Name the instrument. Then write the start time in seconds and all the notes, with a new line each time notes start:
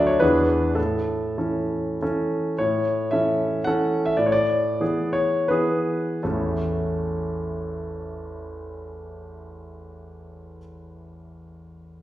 grand piano
Already playing: D2 F#3 D4 A4 D5 E5
0.07 C#5
0.20 E2 E3 D4 G#4 B4
0.75 A2 A4
1.38 E3 C#4 A4
2.02 E3 C#4 A4
2.58 A2 C#5
3.11 E3 C#4 A4 E5
3.64 E3 C#4 A4 F#5
4.05 E5
4.17 A2 D5
4.26 C#5
4.32 D5
4.80 E3 B3 G#4
5.13 C#5
5.48 E3 B3 G#4 B4
6.23 A1 E2 E3 A3 C#4 E4 A4